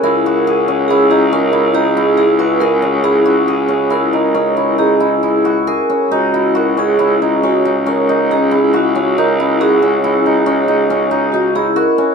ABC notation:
X:1
M:7/4
L:1/8
Q:1/4=138
K:C#dor
V:1 name="Vibraphone"
A4 G G A2 G2 G B A2 | G4 A4 G4 A2 | F2 A G3 F2 A2 G2 F2 | A2 G8 F G A2 |]
V:2 name="Hammered dulcimer"
E F G C E D C E D E E F G C | E F G C E D C E D E E F G C | D E F C E D C D C D D E F C | D E F C E D C D C D D E F C |]
V:3 name="Baritone saxophone" clef=bass
C,,12- C,,2- | C,,12- C,, z | C,,12- C,,2- | C,,12- C,, z |]